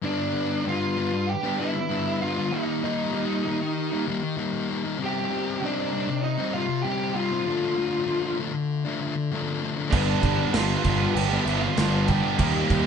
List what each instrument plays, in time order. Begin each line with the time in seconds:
0.02 distorted electric guitar G2 D3 G3 B3 D4, french horn section G3 D4 B4, lead electric guitar D4 D5
0.33 distorted electric guitar D3 G3 B3 D4
0.65 distorted electric guitar G2 D3 G3 B3 D4, lead electric guitar F4 F5
0.97 distorted electric guitar D3 G3 B3 D4
1.13 muted distorted electric guitar stroke
1.29 lead electric guitar G4 G5
1.43 distorted electric guitar G3 B3 D4
1.59 distorted electric guitar D3 G3 B3 D4, lead electric guitar E4 E5
1.76 muted distorted electric guitar stroke
1.89 distorted electric guitar G2 D3 G3 B3 D4
2.22 distorted electric guitar D3 G3 B3 D4, lead electric guitar F4 F5
2.36 distorted electric guitar G3 B3 D4
2.52 distorted electric guitar D#3 G3 A#3 D#4, french horn section D#3 A#3 G4, lead electric guitar D#4 D#5
2.83 distorted electric guitar D#3 G3 A#3 D#4, lead electric guitar D#4 D#5
3.13 distorted electric guitar D#3 G3 A#3 D#4
3.45 distorted electric guitar D#3 G3 A#3 D#4
3.61 muted distorted electric guitar stroke
3.92 distorted electric guitar G3 A#3 D#4
4.07 distorted electric guitar D#3 G3 A#3 D#4
4.22 muted distorted electric guitar stroke
4.37 distorted electric guitar D#3 G3 A#3 D#4
4.69 distorted electric guitar D#3 G3 A#3 D#4
4.84 distorted electric guitar G3 A#3 D#4
4.99 distorted electric guitar C3 G3 C4 D#4, french horn section C3 D#3 G3
5.04 lead electric guitar G4 G5
5.30 distorted electric guitar C3 G3 C4 D#4
5.61 distorted electric guitar C3 G3 C4 D#4, lead electric guitar D4
5.66 lead electric guitar D5
5.92 distorted electric guitar C3 G3 C4 D#4
6.09 muted distorted electric guitar stroke
6.23 lead electric guitar D#4 D#5
6.38 distorted electric guitar G3 C4 D#4
6.53 distorted electric guitar C3 G3 C4 D#4, lead electric guitar F4 F5
6.68 muted distorted electric guitar stroke
6.82 distorted electric guitar C3 G3 C4, lead electric guitar G4 G5
6.87 distorted electric guitar D#4
7.14 distorted electric guitar C3 G3 C4 D#4, lead electric guitar F4 F5
7.30 distorted electric guitar G3 C4 D#4
7.45 distorted electric guitar D3 F3 A3 D4, french horn section D3 F4
7.49 french horn section A3
7.76 distorted electric guitar D3 F3 A3 D4
8.06 distorted electric guitar D3 F3 A3 D4
8.38 distorted electric guitar D3 F3 A3 D4
8.54 muted distorted electric guitar stroke
8.84 distorted electric guitar F3 A3 D4
9.00 distorted electric guitar D3 F3 A3 D4
9.16 muted distorted electric guitar stroke
9.32 distorted electric guitar D3 F3 A3 D4
9.61 distorted electric guitar D3 F3 A3 D4
9.77 distorted electric guitar F3 A3 D4
9.90 picked electric bass G1, distorted electric guitar G2 D3 G3 B3 D4, french horn section G3 D4 B4, lead electric guitar D4 D5, kick, crash
10.08 overdriven electric guitar G3 B3 D4
10.22 picked electric bass G1, distorted electric guitar D3 G3 B3 D4, kick, crash
10.53 picked electric bass G1, distorted electric guitar G2 D3 G3 B3 D4, lead electric guitar F4 F5, snare, crash
10.71 muted overdriven electric guitar stroke
10.84 picked electric bass G1, distorted electric guitar G2 D3 G3 B3 D4, kick, crash
11.00 muted distorted electric guitar stroke
11.15 picked electric bass G1, lead electric guitar G4 G5, crash
11.31 distorted electric guitar G3 B3 D4
11.45 picked electric bass G1, distorted electric guitar D3 G3 B3, lead electric guitar E4 E5, crash
11.49 distorted electric guitar D4
11.61 lead electric guitar F4 F5, muted overdriven electric guitar stroke, muted distorted electric guitar stroke
11.76 picked electric bass G1, distorted electric guitar G2 D3 G3 B3 D4, snare, crash
12.07 distorted electric guitar D3 G3 B3 D4, lead electric guitar G4 G5, kick, crash
12.23 distorted electric guitar G3 B3 D4
12.38 picked electric bass D#2, distorted electric guitar D#3 G3 A#3 D#4, french horn section D#3 A#3, lead electric guitar G4 G5, kick, crash
12.43 french horn section G4
12.53 overdriven electric guitar G3 A#3 D#4
12.69 picked electric bass D#2, distorted electric guitar D#3 G3 A#3 D#4, kick, crash